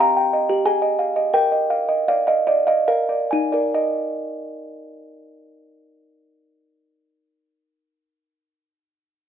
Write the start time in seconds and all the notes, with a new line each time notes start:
Already playing: C4 G5
0.00 F5 A#5
0.17 G5
0.33 D#5
0.49 G4
0.65 G#4 G#5
0.82 D#5
0.99 F5
1.16 D#5
1.34 A#4 G5
1.52 D#5
1.70 F5
1.89 D#5
2.08 D5 F5
2.27 D#5 F5
2.47 D5 D#5
2.67 D#5 F5
2.88 A#4 F5
3.09 D5
3.31 D#4 G#5
3.52 A#4 D5
3.75 D#5